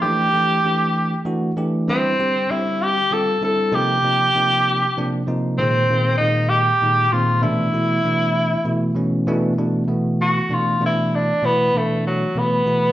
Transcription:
<<
  \new Staff \with { instrumentName = "Tenor saxophone" } { \time 6/8 \key e \phrygian \tempo 4. = 65 g'2 r4 | c'4 e'8 g'8 a'8 a'8 | g'2~ g'8 r8 | c'4 ees'8 g'4 f'8 |
e'2~ e'8 r8 | \key b \minor r4. fis'8 eis'8 e'8 | d'8 b8 a8 fis8 b4 | }
  \new Staff \with { instrumentName = "Tine electric piano" } { \clef bass \time 6/8 \key e \phrygian <e a d' g'>8 <e a d' g'>8 <e a d' g'>4 <e a d' fis'>8 <e a d' g'>8 | <d g c' e'>8 <d g c' g'>8 <d g c' g'>4 <d g c' f'>8 <d g c' e'>8 | <c f bes ees'>8 <c f bes ees'>8 <c f bes ees'>4 <c f bes d'>8 <c f bes ees'>8 | <bes, ees aes c'>8 <bes, ees aes bes>8 <bes, ees aes bes>4 <bes, ees aes ees'>8 <bes, ees aes c'>8 |
<b, e a d'>8 <b, e a e'>8 <b, e a d'>4 <b, e a e'>8 <b, e a cis'>8 | \key b \minor <b, e a d'>8 <b, e a d'>8 <b, e a b>4 <b, e a d'>8 <b, e a d'>8~ | <b, e a d'>8 <b, e a e'>8 <b, e a d'>4 <b, e a b>8 <b, e a e'>8 | }
>>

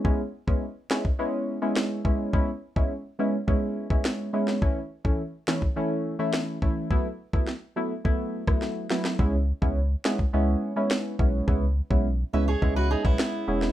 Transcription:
<<
  \new Staff \with { instrumentName = "Steel-string acoustic guitar" } { \time 4/4 \key cis \minor \tempo 4 = 105 r1 | r1 | r1 | r1 |
r1 | r4. <b' e''>16 <gis' cis''>8 <fis' b'>16 <dis' gis'>16 <b e'>4~ <b e'>16 | }
  \new Staff \with { instrumentName = "Synth stab" } { \time 4/4 \key cis \minor <gis b cis' e'>16 r8 <gis b cis' e'>16 r8 <gis b cis' e'>16 r16 <gis b cis' e'>8. <gis b cis' e'>8. <gis b cis' e'>8 | <gis b cis' e'>16 r8 <gis b cis' e'>16 r8 <gis b cis' e'>16 r16 <gis b cis' e'>8. <gis b cis' e'>8. <gis b cis' e'>8 | <e a cis' e'>16 r8 <e a cis' e'>16 r8 <e a cis' e'>16 r16 <e a cis' e'>8. <e a cis' e'>8. <e a cis' e'>8 | <fis a b e'>16 r8 <fis a b e'>16 r8 <fis a b e'>16 r16 <fis a b e'>8. <fis a b e'>8. <fis a b e'>8 |
<gis b cis' e'>16 r8 <gis b cis' e'>16 r8 <gis b cis' e'>16 r16 <gis b cis' e'>8. <gis b cis' e'>8. <gis b cis' e'>8 | <gis b cis' e'>16 r8 <gis b cis' e'>16 r8 <gis b cis' e'>16 r16 <gis b cis' e'>8. <gis b cis' e'>8. <gis b cis' e'>8 | }
  \new Staff \with { instrumentName = "Sub bass" } { \clef bass \time 4/4 \key cis \minor r1 | r1 | r1 | r1 |
cis,8. cis,8. r8 cis,8 r4 b,,8 | cis,8. b,,8. cis,8 cis,8. b,,16 r8 e,,8 | }
  \new DrumStaff \with { instrumentName = "Drums" } \drummode { \time 4/4 bd8. bd16 r8 sn16 bd16 r4 sn8 bd8 | bd8. bd16 r4 bd8. bd16 sn8. sn16 | bd8. bd16 r8 sn16 bd16 r4 sn8 bd8 | bd8. bd16 sn4 bd8. <bd ss>16 sn8 sn16 sn16 |
bd8. bd16 r8 sn16 bd16 r4 sn8 bd8 | bd8. bd16 r4 bd8. bd16 sn8. sn16 | }
>>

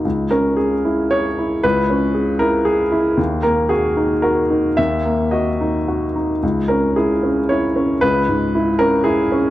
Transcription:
\new Staff \with { instrumentName = "Grand piano" } { \time 3/4 \key cis \dorian \tempo 4 = 114 << { r8 ais'8 gis'4 cis''4 | b'4. ais'8 gis'4 | r8 ais'8 gis'4 ais'4 | e''4 dis''4. r8 |
r8 ais'8 gis'4 cis''4 | b'4. ais'8 gis'4 | } \\ { cis,8 cis'4 e'8 gis'8 e'8 | cis,8 cis'8 gis'8 e'4 e'8 | dis,8 ais8 fis'8 dis'8 fis'8 dis'8 | dis,8 ais8 fis'8 dis'8 fis'8 dis'8 |
cis,8 cis'8 e'8 cis'8 e'8 cis'8 | cis,8 gis,8 e'8 cis'8 e'8 cis'8 | } >> }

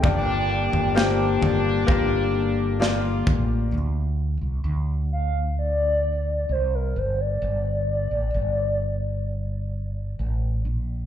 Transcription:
<<
  \new Staff \with { instrumentName = "Soft synth lead" } { \time 4/4 \key g \minor \tempo 4 = 65 g''2~ g''8 r4. | r4. f''8 d''4 c''16 bes'16 c''16 d''16~ | d''2~ d''8. r4 r16 | }
  \new Staff \with { instrumentName = "Felt piano" } { \time 4/4 \key g \minor <bes f' g' d''>4 <bes f' g' c''>4 <bes f' g' bes'>4 <bes f' g' d''>4 | r1 | r1 | }
  \new Staff \with { instrumentName = "Felt piano" } { \clef bass \time 4/4 \key g \minor g,4. r2 r8 | r1 | r1 | }
  \new Staff \with { instrumentName = "French horn section" } { \time 4/4 \key g \minor d'4 d'2 f'4 | r1 | r1 | }
  \new Staff \with { instrumentName = "French horn section" } { \time 4/4 \key g \minor <d g bes f' g'>1 | r1 | r1 | }
  \new Staff \with { instrumentName = "Fretless electric bass" } { \clef bass \time 4/4 \key g \minor g,,8. g,,8. g,,8 g,,4. a,,8 | d,8. c,16 d,2 c,8 g,,8 | g,,8. a,,16 g,,2 a,,8 bes,,8 | }
  \new DrumStaff \with { instrumentName = "Drums" } \drummode { \time 4/4 <bd tomfh>8. tomfh16 sn8 tomfh8 <bd tomfh>4 sn8 <bd tomfh>8 | r4 r4 r4 r4 | r4 r4 r4 r4 | }
>>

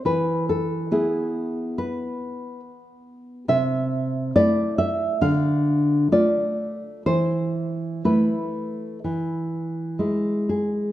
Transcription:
\new Staff \with { instrumentName = "Nylon-string guitar" } { \time 4/4 \key e \phrygian \tempo 4 = 68 << { b'8 a'8 gis'4 b'4 r4 | e''4 d''8 e''8 f''4 d''4 | c''4 b'2~ b'8 gis'8 | } \\ { e4 <b e'>2. | c4 <a e'>4 d4 <a f'>4 | e4 <a e'>4 e4 <gis e'>4 | } >> }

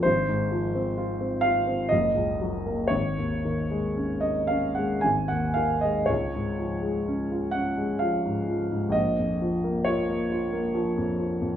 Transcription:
<<
  \new Staff \with { instrumentName = "Grand piano" } { \time 3/4 \key des \major \tempo 4 = 63 c''4. f''8 ees''4 | des''4~ des''16 ees''16 f''16 ges''16 aes''16 ges''16 f''16 ees''16 | des''4. ges''8 f''4 | ees''4 des''2 | }
  \new Staff \with { instrumentName = "Grand piano" } { \clef bass \time 3/4 \key des \major aes,,16 aes,16 f16 c'16 f'16 c'16 f'16 c'16 ges,,16 des,16 ges16 bes16 | aes,,16 ees,16 ees16 aes16 des'16 ees'16 des'16 aes16 aes,,16 ees,16 ees16 aes16 | des,16 aes,16 f16 aes16 des'16 f'16 des'16 aes16 f16 aes,16 f16 aes,16 | bes,,16 f,16 f16 bes16 f'16 bes16 f'16 bes16 f16 f,16 f16 f,16 | }
>>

